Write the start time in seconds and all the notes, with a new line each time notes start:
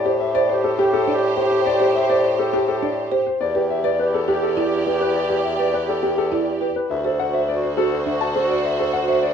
Already playing: A2 G4 C5
0.05 G4 C5
0.20 G4 E5
0.35 C5 D5
0.49 G4 C5
0.64 A4
0.79 G4
0.93 A4
1.08 D4 D5
1.13 G4
1.37 G4 C5
1.43 G4
1.51 C5
1.66 D5
1.74 G4
1.80 G4 C5
1.95 E5
2.04 G4
2.10 C5 D5
2.24 C5
2.35 G4
2.39 A4
2.53 G4
2.65 G4 A4
2.83 D4 D5
2.95 G4
3.12 G4 C5
3.26 C5
3.40 E2 G4 D5
3.55 G4 B4
3.70 G4 E5
3.84 B4 D5
3.99 G4 B4
4.14 A4
4.28 G4
4.43 A4
4.57 E4 D5
4.62 G4
4.86 G4 B4
4.93 G4
5.01 B4
5.16 D5
5.23 G4
5.30 G4 B4
5.45 E5
5.53 G4
5.59 B4 D5
5.74 B4
5.84 G4
5.89 A4
6.03 G4
6.14 G4 A4
6.32 E4 D5
6.45 G4
6.61 G4 B4
6.76 B4
6.90 D2 F#4 C5 E5
7.04 A4 C5
7.19 F#4 F#5
7.33 C5 E5
7.49 F#4 D5
7.63 C5
7.77 F#4 A4
7.92 C5
8.06 D4 E5
8.11 F#4
8.21 A5
8.36 A4 C5
8.42 F#4
8.50 D5
8.65 E5
8.72 F#4
8.79 A4 C5
8.93 F#5
9.03 F#4
9.08 C5 E5
9.23 D5